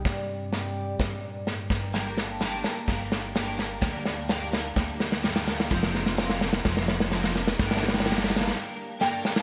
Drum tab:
SD |o-------o-------o-------o---o---|o---o---o---o---o---o---o---o---|o---o---o---o---o---o-o-o-o-o-o-|o-o-o-o-o-o-o-o-o-o-o-o-o-o-o-o-|
BD |o---------------o-----------o---|----------------o---------------|o---------------o---------------|o---------------o---------------|

SD |o-oooooooooooooo--------o---o-o-|
BD |o-------------------------------|